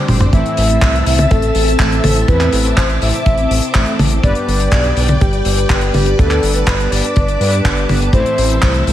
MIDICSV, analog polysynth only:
0, 0, Header, 1, 2, 480
1, 0, Start_track
1, 0, Key_signature, 0, "minor"
1, 0, Tempo, 487805
1, 326, Time_signature, 4, 2, 24, 8
1, 8784, End_track
2, 0, Start_track
2, 0, Title_t, "Analog polysynth"
2, 0, Program_c, 0, 90
2, 84, Note_on_c, 0, 62, 81
2, 84, Note_on_c, 0, 67, 80
2, 85, Note_on_c, 0, 45, 88
2, 85, Note_on_c, 0, 60, 83
2, 85, Note_on_c, 0, 72, 98
2, 296, Note_off_c, 0, 45, 0
2, 296, Note_off_c, 0, 60, 0
2, 296, Note_off_c, 0, 62, 0
2, 296, Note_off_c, 0, 67, 0
2, 296, Note_off_c, 0, 72, 0
2, 325, Note_on_c, 0, 45, 102
2, 325, Note_on_c, 0, 52, 92
2, 325, Note_on_c, 0, 57, 92
2, 325, Note_on_c, 0, 60, 91
2, 325, Note_on_c, 0, 64, 115
2, 1016, Note_off_c, 0, 45, 0
2, 1016, Note_off_c, 0, 52, 0
2, 1016, Note_off_c, 0, 57, 0
2, 1016, Note_off_c, 0, 60, 0
2, 1017, Note_off_c, 0, 64, 0
2, 1045, Note_on_c, 0, 45, 85
2, 1045, Note_on_c, 0, 52, 80
2, 1045, Note_on_c, 0, 57, 81
2, 1045, Note_on_c, 0, 60, 80
2, 1045, Note_on_c, 0, 64, 95
2, 1174, Note_off_c, 0, 45, 0
2, 1174, Note_off_c, 0, 52, 0
2, 1174, Note_off_c, 0, 57, 0
2, 1174, Note_off_c, 0, 60, 0
2, 1174, Note_off_c, 0, 64, 0
2, 1766, Note_on_c, 0, 45, 80
2, 1766, Note_on_c, 0, 52, 75
2, 1766, Note_on_c, 0, 57, 73
2, 1766, Note_on_c, 0, 60, 74
2, 1766, Note_on_c, 0, 64, 88
2, 2217, Note_off_c, 0, 45, 0
2, 2217, Note_off_c, 0, 52, 0
2, 2217, Note_off_c, 0, 57, 0
2, 2217, Note_off_c, 0, 60, 0
2, 2217, Note_off_c, 0, 64, 0
2, 2245, Note_on_c, 0, 45, 98
2, 2245, Note_on_c, 0, 52, 91
2, 2245, Note_on_c, 0, 57, 95
2, 2245, Note_on_c, 0, 60, 93
2, 2245, Note_on_c, 0, 64, 112
2, 2937, Note_off_c, 0, 45, 0
2, 2937, Note_off_c, 0, 52, 0
2, 2937, Note_off_c, 0, 57, 0
2, 2937, Note_off_c, 0, 60, 0
2, 2937, Note_off_c, 0, 64, 0
2, 2965, Note_on_c, 0, 45, 89
2, 2965, Note_on_c, 0, 52, 81
2, 2965, Note_on_c, 0, 57, 79
2, 2965, Note_on_c, 0, 60, 82
2, 2965, Note_on_c, 0, 64, 96
2, 3094, Note_off_c, 0, 45, 0
2, 3094, Note_off_c, 0, 52, 0
2, 3094, Note_off_c, 0, 57, 0
2, 3094, Note_off_c, 0, 60, 0
2, 3094, Note_off_c, 0, 64, 0
2, 3685, Note_on_c, 0, 45, 81
2, 3685, Note_on_c, 0, 52, 75
2, 3685, Note_on_c, 0, 60, 74
2, 3685, Note_on_c, 0, 64, 90
2, 3686, Note_on_c, 0, 57, 76
2, 4137, Note_off_c, 0, 45, 0
2, 4137, Note_off_c, 0, 52, 0
2, 4137, Note_off_c, 0, 57, 0
2, 4137, Note_off_c, 0, 60, 0
2, 4137, Note_off_c, 0, 64, 0
2, 4166, Note_on_c, 0, 43, 100
2, 4166, Note_on_c, 0, 59, 95
2, 4166, Note_on_c, 0, 62, 94
2, 4166, Note_on_c, 0, 67, 94
2, 4166, Note_on_c, 0, 71, 114
2, 4857, Note_off_c, 0, 43, 0
2, 4857, Note_off_c, 0, 59, 0
2, 4857, Note_off_c, 0, 62, 0
2, 4857, Note_off_c, 0, 67, 0
2, 4857, Note_off_c, 0, 71, 0
2, 4885, Note_on_c, 0, 59, 79
2, 4885, Note_on_c, 0, 62, 81
2, 4885, Note_on_c, 0, 71, 95
2, 4886, Note_on_c, 0, 43, 89
2, 4886, Note_on_c, 0, 67, 80
2, 5014, Note_off_c, 0, 43, 0
2, 5014, Note_off_c, 0, 59, 0
2, 5014, Note_off_c, 0, 62, 0
2, 5014, Note_off_c, 0, 67, 0
2, 5014, Note_off_c, 0, 71, 0
2, 5606, Note_on_c, 0, 43, 78
2, 5606, Note_on_c, 0, 59, 73
2, 5606, Note_on_c, 0, 62, 75
2, 5606, Note_on_c, 0, 67, 73
2, 5606, Note_on_c, 0, 71, 88
2, 6057, Note_off_c, 0, 43, 0
2, 6057, Note_off_c, 0, 59, 0
2, 6057, Note_off_c, 0, 62, 0
2, 6057, Note_off_c, 0, 67, 0
2, 6057, Note_off_c, 0, 71, 0
2, 6087, Note_on_c, 0, 43, 101
2, 6087, Note_on_c, 0, 59, 91
2, 6087, Note_on_c, 0, 62, 95
2, 6087, Note_on_c, 0, 67, 91
2, 6087, Note_on_c, 0, 71, 110
2, 6777, Note_off_c, 0, 59, 0
2, 6778, Note_off_c, 0, 43, 0
2, 6778, Note_off_c, 0, 62, 0
2, 6778, Note_off_c, 0, 67, 0
2, 6778, Note_off_c, 0, 71, 0
2, 6806, Note_on_c, 0, 43, 89
2, 6806, Note_on_c, 0, 59, 80
2, 6806, Note_on_c, 0, 62, 80
2, 6806, Note_on_c, 0, 67, 82
2, 6806, Note_on_c, 0, 71, 98
2, 6935, Note_off_c, 0, 43, 0
2, 6935, Note_off_c, 0, 59, 0
2, 6935, Note_off_c, 0, 62, 0
2, 6935, Note_off_c, 0, 67, 0
2, 6935, Note_off_c, 0, 71, 0
2, 7286, Note_on_c, 0, 67, 90
2, 7287, Note_on_c, 0, 43, 98
2, 7287, Note_on_c, 0, 59, 89
2, 7287, Note_on_c, 0, 62, 90
2, 7287, Note_on_c, 0, 71, 110
2, 7737, Note_off_c, 0, 43, 0
2, 7737, Note_off_c, 0, 67, 0
2, 7738, Note_off_c, 0, 59, 0
2, 7738, Note_off_c, 0, 62, 0
2, 7738, Note_off_c, 0, 71, 0
2, 7767, Note_on_c, 0, 59, 89
2, 7767, Note_on_c, 0, 67, 83
2, 7768, Note_on_c, 0, 62, 81
2, 7768, Note_on_c, 0, 71, 101
2, 7978, Note_off_c, 0, 59, 0
2, 7978, Note_off_c, 0, 62, 0
2, 7978, Note_off_c, 0, 67, 0
2, 7978, Note_off_c, 0, 71, 0
2, 8007, Note_on_c, 0, 52, 93
2, 8007, Note_on_c, 0, 57, 93
2, 8007, Note_on_c, 0, 60, 93
2, 8008, Note_on_c, 0, 45, 100
2, 8008, Note_on_c, 0, 64, 110
2, 8698, Note_off_c, 0, 45, 0
2, 8698, Note_off_c, 0, 52, 0
2, 8698, Note_off_c, 0, 57, 0
2, 8698, Note_off_c, 0, 60, 0
2, 8698, Note_off_c, 0, 64, 0
2, 8727, Note_on_c, 0, 45, 88
2, 8727, Note_on_c, 0, 52, 82
2, 8727, Note_on_c, 0, 57, 81
2, 8727, Note_on_c, 0, 60, 81
2, 8727, Note_on_c, 0, 64, 97
2, 8784, Note_off_c, 0, 45, 0
2, 8784, Note_off_c, 0, 52, 0
2, 8784, Note_off_c, 0, 57, 0
2, 8784, Note_off_c, 0, 60, 0
2, 8784, Note_off_c, 0, 64, 0
2, 8784, End_track
0, 0, End_of_file